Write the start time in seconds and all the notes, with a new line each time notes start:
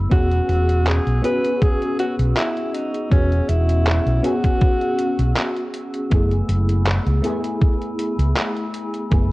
Already playing: A3 B3 E4 G#4 E6
0.10 E1 B3 C#4 F#4 G#4 F#5 C#6, kick, closed hi-hat
0.32 closed hi-hat
0.49 E1, closed hi-hat
0.69 closed hi-hat
0.87 G#4, clap, closed hi-hat
1.06 B1, closed hi-hat
1.22 B3 C#4 F#4 G#4 B4, closed hi-hat
1.44 closed hi-hat
1.62 G#4, kick, closed hi-hat
1.82 closed hi-hat
1.99 F#4, closed hi-hat
2.19 B1, closed hi-hat
2.37 E4, clap, closed hi-hat
2.57 closed hi-hat
2.74 D#4, closed hi-hat
2.94 closed hi-hat
3.10 E1 B3 C#4 F#4 G#4, kick, closed hi-hat
3.32 closed hi-hat
3.49 E1 E4, closed hi-hat
3.69 closed hi-hat
3.87 clap, closed hi-hat
4.06 B1, closed hi-hat
4.23 B3 C#4 F#4 G#4, closed hi-hat
4.44 kick, closed hi-hat
4.61 kick, closed hi-hat
4.81 closed hi-hat
4.99 closed hi-hat
5.19 B1, closed hi-hat
5.37 clap, closed hi-hat
5.56 closed hi-hat
5.74 closed hi-hat
5.94 closed hi-hat
6.10 F#1 A3 B3 E4 G#4 G#5 B5, kick, closed hi-hat
6.31 closed hi-hat
6.48 F#1, closed hi-hat
6.69 closed hi-hat
6.86 clap, closed hi-hat
7.06 C#2, closed hi-hat
7.22 A3 B3 E4 G#4, closed hi-hat
7.44 closed hi-hat
7.61 kick, closed hi-hat
7.82 closed hi-hat
7.99 closed hi-hat
8.19 C#2, closed hi-hat
8.37 clap, closed hi-hat
8.57 closed hi-hat
8.74 closed hi-hat
8.94 closed hi-hat
9.10 F#1 A3 B3 E4 G#4 F#6, kick, closed hi-hat